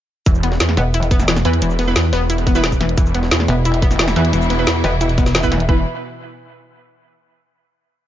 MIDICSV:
0, 0, Header, 1, 7, 480
1, 0, Start_track
1, 0, Tempo, 338983
1, 372, Time_signature, 4, 2, 24, 8
1, 11437, End_track
2, 0, Start_track
2, 0, Title_t, "Synth stab"
2, 0, Program_c, 0, 62
2, 2052, Note_on_c, 0, 64, 69
2, 2053, Note_on_c, 0, 59, 73
2, 2053, Note_on_c, 0, 71, 81
2, 2166, Note_off_c, 0, 59, 0
2, 2166, Note_off_c, 0, 64, 0
2, 2166, Note_off_c, 0, 71, 0
2, 2653, Note_on_c, 0, 64, 68
2, 2653, Note_on_c, 0, 71, 88
2, 2654, Note_on_c, 0, 59, 78
2, 2834, Note_off_c, 0, 59, 0
2, 2834, Note_off_c, 0, 64, 0
2, 2834, Note_off_c, 0, 71, 0
2, 3613, Note_on_c, 0, 59, 92
2, 3613, Note_on_c, 0, 64, 84
2, 3613, Note_on_c, 0, 71, 100
2, 3726, Note_off_c, 0, 59, 0
2, 3726, Note_off_c, 0, 64, 0
2, 3726, Note_off_c, 0, 71, 0
2, 5893, Note_on_c, 0, 59, 76
2, 5893, Note_on_c, 0, 64, 69
2, 5894, Note_on_c, 0, 71, 82
2, 6006, Note_off_c, 0, 59, 0
2, 6006, Note_off_c, 0, 64, 0
2, 6006, Note_off_c, 0, 71, 0
2, 6493, Note_on_c, 0, 64, 70
2, 6494, Note_on_c, 0, 59, 75
2, 6494, Note_on_c, 0, 71, 85
2, 6674, Note_off_c, 0, 59, 0
2, 6674, Note_off_c, 0, 64, 0
2, 6674, Note_off_c, 0, 71, 0
2, 7694, Note_on_c, 0, 59, 95
2, 7694, Note_on_c, 0, 64, 89
2, 7694, Note_on_c, 0, 71, 106
2, 7874, Note_off_c, 0, 59, 0
2, 7874, Note_off_c, 0, 64, 0
2, 7874, Note_off_c, 0, 71, 0
2, 8053, Note_on_c, 0, 71, 93
2, 8054, Note_on_c, 0, 59, 86
2, 8054, Note_on_c, 0, 64, 81
2, 8232, Note_off_c, 0, 59, 0
2, 8232, Note_off_c, 0, 64, 0
2, 8232, Note_off_c, 0, 71, 0
2, 11437, End_track
3, 0, Start_track
3, 0, Title_t, "Synth arpeggio sound"
3, 0, Program_c, 1, 84
3, 374, Note_on_c, 1, 52, 83
3, 463, Note_off_c, 1, 52, 0
3, 614, Note_on_c, 1, 59, 76
3, 703, Note_off_c, 1, 59, 0
3, 1094, Note_on_c, 1, 59, 100
3, 1183, Note_off_c, 1, 59, 0
3, 1333, Note_on_c, 1, 64, 83
3, 1423, Note_off_c, 1, 64, 0
3, 1573, Note_on_c, 1, 59, 103
3, 1627, Note_off_c, 1, 59, 0
3, 1814, Note_on_c, 1, 52, 81
3, 1903, Note_off_c, 1, 52, 0
3, 2053, Note_on_c, 1, 52, 102
3, 2107, Note_off_c, 1, 52, 0
3, 2293, Note_on_c, 1, 52, 81
3, 2383, Note_off_c, 1, 52, 0
3, 2534, Note_on_c, 1, 59, 78
3, 2623, Note_off_c, 1, 59, 0
3, 3013, Note_on_c, 1, 59, 104
3, 3103, Note_off_c, 1, 59, 0
3, 3254, Note_on_c, 1, 64, 83
3, 3343, Note_off_c, 1, 64, 0
3, 3493, Note_on_c, 1, 59, 106
3, 3547, Note_off_c, 1, 59, 0
3, 3733, Note_on_c, 1, 52, 77
3, 3823, Note_off_c, 1, 52, 0
3, 3973, Note_on_c, 1, 52, 107
3, 4027, Note_off_c, 1, 52, 0
3, 4213, Note_on_c, 1, 52, 81
3, 4303, Note_off_c, 1, 52, 0
3, 4454, Note_on_c, 1, 59, 78
3, 4543, Note_off_c, 1, 59, 0
3, 4933, Note_on_c, 1, 59, 100
3, 5023, Note_off_c, 1, 59, 0
3, 5173, Note_on_c, 1, 64, 83
3, 5263, Note_off_c, 1, 64, 0
3, 5414, Note_on_c, 1, 59, 105
3, 5467, Note_off_c, 1, 59, 0
3, 5654, Note_on_c, 1, 52, 76
3, 5743, Note_off_c, 1, 52, 0
3, 5894, Note_on_c, 1, 52, 104
3, 5947, Note_off_c, 1, 52, 0
3, 6134, Note_on_c, 1, 52, 83
3, 6223, Note_off_c, 1, 52, 0
3, 6373, Note_on_c, 1, 59, 76
3, 6463, Note_off_c, 1, 59, 0
3, 6853, Note_on_c, 1, 59, 101
3, 6943, Note_off_c, 1, 59, 0
3, 7093, Note_on_c, 1, 64, 83
3, 7183, Note_off_c, 1, 64, 0
3, 7332, Note_on_c, 1, 59, 107
3, 7387, Note_off_c, 1, 59, 0
3, 7573, Note_on_c, 1, 52, 78
3, 7663, Note_off_c, 1, 52, 0
3, 7813, Note_on_c, 1, 52, 104
3, 7867, Note_off_c, 1, 52, 0
3, 8053, Note_on_c, 1, 52, 91
3, 8276, Note_off_c, 1, 52, 0
3, 11437, End_track
4, 0, Start_track
4, 0, Title_t, "String section"
4, 0, Program_c, 2, 48
4, 4212, Note_on_c, 2, 47, 83
4, 4213, Note_on_c, 2, 52, 80
4, 4213, Note_on_c, 2, 64, 93
4, 8014, Note_off_c, 2, 47, 0
4, 8014, Note_off_c, 2, 52, 0
4, 8015, Note_off_c, 2, 64, 0
4, 8053, Note_on_c, 2, 47, 73
4, 8053, Note_on_c, 2, 64, 80
4, 8054, Note_on_c, 2, 52, 67
4, 8276, Note_off_c, 2, 47, 0
4, 8276, Note_off_c, 2, 64, 0
4, 8277, Note_off_c, 2, 52, 0
4, 11437, End_track
5, 0, Start_track
5, 0, Title_t, "Detuned saw bass"
5, 0, Program_c, 3, 39
5, 373, Note_on_c, 3, 28, 98
5, 594, Note_off_c, 3, 28, 0
5, 612, Note_on_c, 3, 28, 93
5, 833, Note_off_c, 3, 28, 0
5, 853, Note_on_c, 3, 40, 104
5, 1074, Note_off_c, 3, 40, 0
5, 2053, Note_on_c, 3, 40, 100
5, 2274, Note_off_c, 3, 40, 0
5, 2294, Note_on_c, 3, 28, 98
5, 2514, Note_off_c, 3, 28, 0
5, 2533, Note_on_c, 3, 28, 98
5, 2754, Note_off_c, 3, 28, 0
5, 2773, Note_on_c, 3, 40, 99
5, 2994, Note_off_c, 3, 40, 0
5, 3014, Note_on_c, 3, 28, 98
5, 4194, Note_off_c, 3, 28, 0
5, 4213, Note_on_c, 3, 28, 98
5, 4434, Note_off_c, 3, 28, 0
5, 4454, Note_on_c, 3, 28, 96
5, 4674, Note_off_c, 3, 28, 0
5, 4694, Note_on_c, 3, 40, 100
5, 4914, Note_off_c, 3, 40, 0
5, 5893, Note_on_c, 3, 40, 103
5, 6114, Note_off_c, 3, 40, 0
5, 6134, Note_on_c, 3, 28, 103
5, 6354, Note_off_c, 3, 28, 0
5, 6374, Note_on_c, 3, 28, 97
5, 6594, Note_off_c, 3, 28, 0
5, 6614, Note_on_c, 3, 40, 104
5, 6834, Note_off_c, 3, 40, 0
5, 8053, Note_on_c, 3, 28, 96
5, 8276, Note_off_c, 3, 28, 0
5, 11437, End_track
6, 0, Start_track
6, 0, Title_t, "Wobble bass"
6, 0, Program_c, 4, 39
6, 1094, Note_on_c, 4, 28, 97
6, 1794, Note_off_c, 4, 28, 0
6, 1813, Note_on_c, 4, 28, 101
6, 2034, Note_off_c, 4, 28, 0
6, 4934, Note_on_c, 4, 28, 98
6, 5634, Note_off_c, 4, 28, 0
6, 5654, Note_on_c, 4, 28, 97
6, 5874, Note_off_c, 4, 28, 0
6, 6854, Note_on_c, 4, 28, 97
6, 7554, Note_off_c, 4, 28, 0
6, 7574, Note_on_c, 4, 28, 99
6, 8034, Note_off_c, 4, 28, 0
6, 11437, End_track
7, 0, Start_track
7, 0, Title_t, "Drums"
7, 373, Note_on_c, 9, 36, 127
7, 373, Note_on_c, 9, 42, 97
7, 373, Note_on_c, 9, 69, 50
7, 493, Note_off_c, 9, 69, 0
7, 493, Note_on_c, 9, 69, 27
7, 515, Note_off_c, 9, 36, 0
7, 515, Note_off_c, 9, 42, 0
7, 613, Note_on_c, 9, 42, 72
7, 635, Note_off_c, 9, 69, 0
7, 733, Note_on_c, 9, 38, 48
7, 755, Note_off_c, 9, 42, 0
7, 853, Note_off_c, 9, 38, 0
7, 853, Note_on_c, 9, 38, 120
7, 853, Note_on_c, 9, 42, 97
7, 853, Note_on_c, 9, 69, 49
7, 973, Note_on_c, 9, 40, 58
7, 995, Note_off_c, 9, 38, 0
7, 995, Note_off_c, 9, 42, 0
7, 995, Note_off_c, 9, 69, 0
7, 1093, Note_on_c, 9, 42, 71
7, 1094, Note_off_c, 9, 42, 0
7, 1094, Note_on_c, 9, 42, 73
7, 1115, Note_off_c, 9, 40, 0
7, 1235, Note_off_c, 9, 42, 0
7, 1333, Note_on_c, 9, 42, 97
7, 1333, Note_on_c, 9, 69, 51
7, 1452, Note_off_c, 9, 42, 0
7, 1452, Note_on_c, 9, 42, 39
7, 1453, Note_off_c, 9, 42, 0
7, 1453, Note_on_c, 9, 42, 45
7, 1475, Note_off_c, 9, 69, 0
7, 1572, Note_off_c, 9, 42, 0
7, 1572, Note_on_c, 9, 42, 73
7, 1573, Note_off_c, 9, 42, 0
7, 1573, Note_on_c, 9, 36, 112
7, 1573, Note_on_c, 9, 42, 69
7, 1573, Note_on_c, 9, 69, 28
7, 1693, Note_off_c, 9, 69, 0
7, 1693, Note_on_c, 9, 40, 36
7, 1693, Note_on_c, 9, 69, 62
7, 1714, Note_off_c, 9, 36, 0
7, 1714, Note_off_c, 9, 42, 0
7, 1812, Note_off_c, 9, 69, 0
7, 1812, Note_on_c, 9, 38, 125
7, 1812, Note_on_c, 9, 42, 99
7, 1812, Note_on_c, 9, 69, 51
7, 1813, Note_off_c, 9, 38, 0
7, 1813, Note_off_c, 9, 42, 0
7, 1813, Note_on_c, 9, 38, 120
7, 1813, Note_on_c, 9, 42, 90
7, 1834, Note_off_c, 9, 40, 0
7, 1932, Note_off_c, 9, 69, 0
7, 1932, Note_on_c, 9, 40, 59
7, 1932, Note_on_c, 9, 69, 59
7, 1933, Note_off_c, 9, 38, 0
7, 1933, Note_on_c, 9, 38, 45
7, 1954, Note_off_c, 9, 42, 0
7, 2052, Note_on_c, 9, 42, 68
7, 2053, Note_off_c, 9, 42, 0
7, 2053, Note_on_c, 9, 42, 69
7, 2074, Note_off_c, 9, 40, 0
7, 2074, Note_off_c, 9, 69, 0
7, 2075, Note_off_c, 9, 38, 0
7, 2173, Note_off_c, 9, 42, 0
7, 2173, Note_on_c, 9, 42, 41
7, 2293, Note_off_c, 9, 42, 0
7, 2293, Note_on_c, 9, 42, 90
7, 2293, Note_on_c, 9, 69, 49
7, 2413, Note_off_c, 9, 69, 0
7, 2413, Note_on_c, 9, 69, 27
7, 2435, Note_off_c, 9, 42, 0
7, 2532, Note_on_c, 9, 46, 82
7, 2533, Note_on_c, 9, 42, 68
7, 2554, Note_off_c, 9, 69, 0
7, 2674, Note_off_c, 9, 42, 0
7, 2674, Note_off_c, 9, 46, 0
7, 2773, Note_on_c, 9, 38, 123
7, 2773, Note_on_c, 9, 42, 88
7, 2773, Note_on_c, 9, 69, 49
7, 2914, Note_off_c, 9, 69, 0
7, 2915, Note_off_c, 9, 38, 0
7, 2915, Note_off_c, 9, 42, 0
7, 3013, Note_on_c, 9, 38, 55
7, 3013, Note_on_c, 9, 42, 71
7, 3155, Note_off_c, 9, 38, 0
7, 3155, Note_off_c, 9, 42, 0
7, 3253, Note_on_c, 9, 42, 97
7, 3253, Note_on_c, 9, 69, 48
7, 3373, Note_off_c, 9, 42, 0
7, 3373, Note_on_c, 9, 42, 38
7, 3395, Note_off_c, 9, 69, 0
7, 3493, Note_off_c, 9, 42, 0
7, 3493, Note_on_c, 9, 36, 113
7, 3493, Note_on_c, 9, 42, 72
7, 3494, Note_off_c, 9, 42, 0
7, 3494, Note_on_c, 9, 42, 71
7, 3494, Note_on_c, 9, 69, 27
7, 3613, Note_on_c, 9, 38, 60
7, 3614, Note_off_c, 9, 69, 0
7, 3614, Note_on_c, 9, 69, 60
7, 3635, Note_off_c, 9, 36, 0
7, 3636, Note_off_c, 9, 42, 0
7, 3733, Note_off_c, 9, 38, 0
7, 3733, Note_off_c, 9, 69, 0
7, 3733, Note_on_c, 9, 38, 124
7, 3733, Note_on_c, 9, 42, 94
7, 3733, Note_on_c, 9, 69, 48
7, 3853, Note_off_c, 9, 69, 0
7, 3853, Note_on_c, 9, 36, 63
7, 3853, Note_on_c, 9, 69, 57
7, 3875, Note_off_c, 9, 38, 0
7, 3875, Note_off_c, 9, 42, 0
7, 3973, Note_on_c, 9, 42, 69
7, 3974, Note_off_c, 9, 42, 0
7, 3974, Note_on_c, 9, 40, 51
7, 3974, Note_on_c, 9, 42, 69
7, 3995, Note_off_c, 9, 36, 0
7, 3995, Note_off_c, 9, 69, 0
7, 4094, Note_off_c, 9, 42, 0
7, 4094, Note_on_c, 9, 42, 40
7, 4115, Note_off_c, 9, 40, 0
7, 4213, Note_off_c, 9, 42, 0
7, 4213, Note_on_c, 9, 36, 127
7, 4213, Note_on_c, 9, 42, 89
7, 4214, Note_off_c, 9, 42, 0
7, 4214, Note_on_c, 9, 42, 91
7, 4214, Note_on_c, 9, 69, 46
7, 4334, Note_off_c, 9, 69, 0
7, 4334, Note_on_c, 9, 69, 27
7, 4355, Note_off_c, 9, 36, 0
7, 4355, Note_off_c, 9, 42, 0
7, 4453, Note_on_c, 9, 42, 71
7, 4454, Note_off_c, 9, 42, 0
7, 4454, Note_on_c, 9, 42, 67
7, 4476, Note_off_c, 9, 69, 0
7, 4573, Note_on_c, 9, 38, 46
7, 4596, Note_off_c, 9, 42, 0
7, 4692, Note_off_c, 9, 38, 0
7, 4692, Note_on_c, 9, 38, 120
7, 4692, Note_on_c, 9, 42, 88
7, 4694, Note_off_c, 9, 38, 0
7, 4694, Note_off_c, 9, 42, 0
7, 4694, Note_on_c, 9, 38, 127
7, 4694, Note_on_c, 9, 42, 95
7, 4694, Note_on_c, 9, 69, 49
7, 4814, Note_on_c, 9, 40, 56
7, 4835, Note_off_c, 9, 38, 0
7, 4835, Note_off_c, 9, 42, 0
7, 4835, Note_off_c, 9, 69, 0
7, 4933, Note_on_c, 9, 42, 64
7, 4955, Note_off_c, 9, 40, 0
7, 5075, Note_off_c, 9, 42, 0
7, 5173, Note_on_c, 9, 42, 92
7, 5173, Note_on_c, 9, 69, 48
7, 5293, Note_off_c, 9, 42, 0
7, 5293, Note_on_c, 9, 42, 37
7, 5315, Note_off_c, 9, 69, 0
7, 5412, Note_off_c, 9, 42, 0
7, 5412, Note_on_c, 9, 42, 69
7, 5414, Note_off_c, 9, 42, 0
7, 5414, Note_on_c, 9, 36, 118
7, 5414, Note_on_c, 9, 42, 67
7, 5414, Note_on_c, 9, 69, 27
7, 5533, Note_off_c, 9, 69, 0
7, 5533, Note_on_c, 9, 40, 35
7, 5533, Note_on_c, 9, 69, 58
7, 5555, Note_off_c, 9, 36, 0
7, 5555, Note_off_c, 9, 42, 0
7, 5652, Note_on_c, 9, 38, 122
7, 5652, Note_on_c, 9, 42, 92
7, 5653, Note_off_c, 9, 38, 0
7, 5653, Note_off_c, 9, 42, 0
7, 5653, Note_off_c, 9, 69, 0
7, 5653, Note_on_c, 9, 38, 123
7, 5653, Note_on_c, 9, 42, 89
7, 5653, Note_on_c, 9, 69, 49
7, 5675, Note_off_c, 9, 40, 0
7, 5773, Note_off_c, 9, 38, 0
7, 5773, Note_off_c, 9, 69, 0
7, 5773, Note_on_c, 9, 38, 47
7, 5773, Note_on_c, 9, 40, 57
7, 5773, Note_on_c, 9, 69, 56
7, 5794, Note_off_c, 9, 42, 0
7, 5893, Note_on_c, 9, 42, 68
7, 5894, Note_off_c, 9, 42, 0
7, 5894, Note_on_c, 9, 42, 64
7, 5914, Note_off_c, 9, 38, 0
7, 5915, Note_off_c, 9, 40, 0
7, 5915, Note_off_c, 9, 69, 0
7, 6014, Note_off_c, 9, 42, 0
7, 6014, Note_on_c, 9, 42, 36
7, 6133, Note_off_c, 9, 42, 0
7, 6133, Note_on_c, 9, 42, 89
7, 6134, Note_off_c, 9, 42, 0
7, 6134, Note_on_c, 9, 42, 90
7, 6134, Note_on_c, 9, 69, 50
7, 6253, Note_off_c, 9, 69, 0
7, 6253, Note_on_c, 9, 69, 28
7, 6275, Note_off_c, 9, 42, 0
7, 6374, Note_on_c, 9, 42, 66
7, 6374, Note_on_c, 9, 46, 81
7, 6395, Note_off_c, 9, 69, 0
7, 6515, Note_off_c, 9, 42, 0
7, 6515, Note_off_c, 9, 46, 0
7, 6613, Note_on_c, 9, 38, 127
7, 6613, Note_on_c, 9, 42, 90
7, 6613, Note_on_c, 9, 69, 50
7, 6755, Note_off_c, 9, 38, 0
7, 6755, Note_off_c, 9, 42, 0
7, 6755, Note_off_c, 9, 69, 0
7, 6853, Note_on_c, 9, 38, 54
7, 6853, Note_on_c, 9, 42, 72
7, 6994, Note_off_c, 9, 38, 0
7, 6994, Note_off_c, 9, 42, 0
7, 7093, Note_on_c, 9, 42, 89
7, 7093, Note_on_c, 9, 69, 48
7, 7213, Note_off_c, 9, 42, 0
7, 7213, Note_on_c, 9, 42, 44
7, 7234, Note_off_c, 9, 69, 0
7, 7333, Note_off_c, 9, 42, 0
7, 7333, Note_on_c, 9, 36, 114
7, 7333, Note_on_c, 9, 42, 70
7, 7333, Note_on_c, 9, 69, 27
7, 7453, Note_off_c, 9, 42, 0
7, 7453, Note_off_c, 9, 69, 0
7, 7453, Note_on_c, 9, 38, 41
7, 7453, Note_on_c, 9, 42, 36
7, 7453, Note_on_c, 9, 69, 59
7, 7475, Note_off_c, 9, 36, 0
7, 7573, Note_off_c, 9, 38, 0
7, 7573, Note_off_c, 9, 42, 0
7, 7573, Note_off_c, 9, 69, 0
7, 7573, Note_on_c, 9, 38, 127
7, 7573, Note_on_c, 9, 42, 91
7, 7573, Note_on_c, 9, 69, 49
7, 7693, Note_off_c, 9, 69, 0
7, 7693, Note_on_c, 9, 36, 66
7, 7693, Note_on_c, 9, 69, 58
7, 7714, Note_off_c, 9, 38, 0
7, 7714, Note_off_c, 9, 42, 0
7, 7812, Note_on_c, 9, 40, 47
7, 7812, Note_on_c, 9, 42, 66
7, 7813, Note_off_c, 9, 42, 0
7, 7813, Note_on_c, 9, 42, 68
7, 7834, Note_off_c, 9, 69, 0
7, 7835, Note_off_c, 9, 36, 0
7, 7933, Note_off_c, 9, 42, 0
7, 7933, Note_on_c, 9, 42, 36
7, 7954, Note_off_c, 9, 40, 0
7, 8053, Note_on_c, 9, 36, 116
7, 8075, Note_off_c, 9, 42, 0
7, 8195, Note_off_c, 9, 36, 0
7, 11437, End_track
0, 0, End_of_file